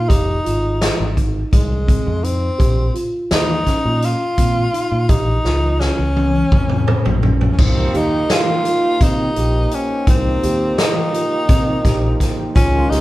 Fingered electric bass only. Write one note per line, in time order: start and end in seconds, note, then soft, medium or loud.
0.10 0.38 F1 medium
0.47 0.89 G#1 medium
1.00 1.42 G#1 medium
1.53 1.95 C2 medium
2.07 2.49 F2 medium
2.60 2.88 A#1 medium
3.31 3.60 D#2 medium
3.85 4.13 A#2 medium
4.38 4.67 A#2 medium
4.92 5.06 A#2 medium
5.09 5.38 A#1 medium
5.45 5.88 C#2 medium
5.99 6.41 C#2 medium
6.52 6.94 F2 medium
7.06 7.48 A#1 medium
7.59 7.87 C2 medium
7.95 8.23 D#2 medium
9.01 9.29 C3 medium
9.37 9.65 A#1 medium
10.07 10.35 C2 medium
10.44 10.71 D#2 medium
11.49 11.77 C3 medium
11.85 12.13 A#1 medium
12.56 12.84 C#2 medium
12.91 13.01 C#2 medium